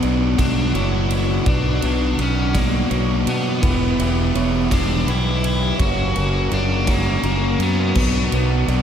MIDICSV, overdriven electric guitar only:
0, 0, Header, 1, 2, 480
1, 0, Start_track
1, 0, Key_signature, 2, "minor"
1, 0, Tempo, 721154
1, 975, Time_signature, 6, 3, 24, 8
1, 5871, End_track
2, 0, Start_track
2, 0, Title_t, "Overdriven electric guitar"
2, 0, Program_c, 0, 29
2, 0, Note_on_c, 0, 59, 97
2, 261, Note_on_c, 0, 62, 96
2, 286, Note_off_c, 0, 59, 0
2, 493, Note_off_c, 0, 62, 0
2, 495, Note_on_c, 0, 64, 111
2, 980, Note_off_c, 0, 64, 0
2, 983, Note_on_c, 0, 62, 99
2, 1470, Note_off_c, 0, 62, 0
2, 1473, Note_on_c, 0, 61, 93
2, 1710, Note_off_c, 0, 61, 0
2, 1712, Note_on_c, 0, 58, 88
2, 2190, Note_on_c, 0, 59, 103
2, 2197, Note_off_c, 0, 58, 0
2, 3149, Note_on_c, 0, 62, 104
2, 3170, Note_off_c, 0, 59, 0
2, 3388, Note_off_c, 0, 62, 0
2, 3390, Note_on_c, 0, 64, 108
2, 3618, Note_off_c, 0, 64, 0
2, 3626, Note_on_c, 0, 64, 106
2, 3843, Note_off_c, 0, 64, 0
2, 3871, Note_on_c, 0, 66, 103
2, 4346, Note_off_c, 0, 66, 0
2, 4348, Note_on_c, 0, 62, 92
2, 4587, Note_off_c, 0, 62, 0
2, 4591, Note_on_c, 0, 58, 96
2, 5071, Note_off_c, 0, 58, 0
2, 5073, Note_on_c, 0, 59, 102
2, 5871, Note_off_c, 0, 59, 0
2, 5871, End_track
0, 0, End_of_file